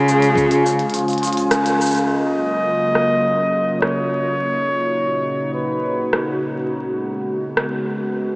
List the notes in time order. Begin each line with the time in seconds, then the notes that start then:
Already playing: C#3 G#3 C#4 F4
0.07 F3, cabasa
0.21 G#3, closed hi-hat, cabasa
0.35 kick, cabasa
0.50 C#4, closed hi-hat, cabasa
0.65 C#3, cabasa
0.79 closed hi-hat
0.90 F3, closed hi-hat
0.94 closed hi-hat, cabasa
0.99 closed hi-hat
1.08 G#3, closed hi-hat, cabasa
1.13 closed hi-hat
1.18 closed hi-hat
1.22 F3, closed hi-hat, cabasa
1.27 closed hi-hat
1.33 G#4, closed hi-hat
1.37 closed hi-hat, cabasa
1.50 C#3, cross-stick, closed hi-hat, cabasa
1.65 C#3, closed hi-hat, cabasa
1.79 G#4, cabasa
1.86 cabasa
1.91 F4, cabasa
1.95 closed hi-hat, cabasa
2.06 C#3 F#3 A#3 F4 D#5
2.95 cross-stick
3.75 D#5
3.80 C#5, cross-stick
4.38 A#2 D#4 F#4
5.54 B4
6.13 cross-stick
6.71 G#3 B3
7.57 cross-stick